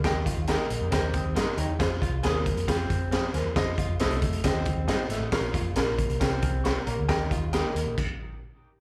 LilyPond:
<<
  \new Staff \with { instrumentName = "Grand piano" } { \time 4/4 \key f \minor \tempo 4 = 136 << { r2 r8 <g'' ees'''>8 <ees'' bes'' c'''>8 <des'' g'' bes''>8~ | <des'' g'' bes''>8 r2 r8 <aes'' f'''>8 <c'' aes''>8~ | <c'' aes''>8 r2. r8 | r2 r8 <aes'' f'''>8 <f'' des'''>8 <des'' bes''>8~ |
<des'' bes''>8 r2. r8 | } \\ { <g' bes' ees'' g''>8 r8 <g' bes' ees'' g''>8 r8 <g' bes' ees'' g''>8 r4. | <f' aes' c'' f''>8 r8 <f' aes' c'' aes''>8 r8 <f' aes' c'' f''>8 r4. | <f' a' c'' ees''>8 r8 <f' a' c'' ees''>8 r8 <f' a' c'' ees''>8 r8 <f' a' c'' ees''>8 r8 | <f' bes' des'' f''>8 r8 <f' bes' des'' aes''>8 r8 <f' bes' des'' f''>8 r4. |
<g' bes' ees'' g''>8 r8 <g' bes' ees'' g''>8 r2 r8 | } >> }
  \new Staff \with { instrumentName = "Grand piano" } { \clef bass \time 4/4 \key f \minor ees4. r2 r8 | r1 | r1 | bes,4. r2 r8 |
ees4. r2 r8 | }
  \new Staff \with { instrumentName = "Clean electric guitar" } { \time 4/4 \key f \minor r4 <ees' g' bes'>8 r4. <ees' g' bes'>8 r8 | r4 <c' f' aes'>8 r4. <c' f' aes'>8 r8 | r4 <c' ees' a'>8 r4. <c' ees' a'>8 r8 | r4 <des' f' bes'>8 r4. <des' f' bes'>8 r8 |
r4 <ees' g' bes'>8 r2 r8 | }
  \new Staff \with { instrumentName = "Clean electric guitar" } { \time 4/4 \key f \minor r8 f'8 bes4 c'4 bes8 ees'8 | r8 f'8 bes4 c'4 c'8 bes8 | r8 f'8 a4 c'4 c'8 a8 | r8 f'8 bes4 c'4 c'8 bes8 |
r8 f'8 bes4 r2 | }
  \new Staff \with { instrumentName = "Picked electric bass" } { \clef bass \time 4/4 \key f \minor ees,8 r16 ees,8 r16 bes,,16 f,16 ees,8. ees,16 g,16 r16 ees,16 e,16 | f,8 c,8 ees,8. f,8. f,8. r16 ees,16 e,16 | f,8 r16 f,16 c,8 f,8 ees,8. ees,16 g,16 r16 aes,,16 a,,16 | bes,,8 f,8 bes,,8. c,8. c,8. r16 bes,,16 d,16 |
ees,4~ ees,16 r16 ees,16 bes,,16 r2 | }
  \new DrumStaff \with { instrumentName = "Drums" } \drummode { \time 4/4 <hh bd sn>8 <hh bd>8 <hh sn>8 hh8 <hh bd sn>8 <hh bd>8 <hh sn>8 hh8 | <hh bd sn>8 <hh bd>8 <hh sn>8 <hh bd>16 hh16 <hh bd sn>8 <hh bd>8 <hh sn>8 <hh sn>8 | <hh bd sn>8 <hh bd>8 <hh sn>16 hh16 <hh bd>16 hh16 <hh bd sn>8 <hh bd>8 <hh sn>8 <hh sn>8 | <hh bd sn>8 <hh bd>8 <hh sn>8 <hh bd>16 hh16 <hh bd sn>8 <hh bd>8 <hh sn>8 hh8 |
<hh bd sn>8 <hh bd>8 <hh sn>8 hh8 <cymc bd>4 r4 | }
>>